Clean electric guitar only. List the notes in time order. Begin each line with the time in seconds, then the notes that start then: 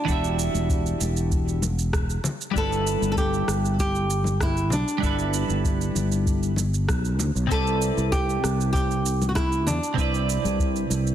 0.05 E3 D4 F#4
0.10 G4 E5
2.52 G3 D4 E4
2.57 A4 B4
4.98 G3 D4 E4
5.04 A4 B4
7.47 C3 C4 E4
7.52 B4 D5
9.94 C3 C4 E4
9.99 B4 D5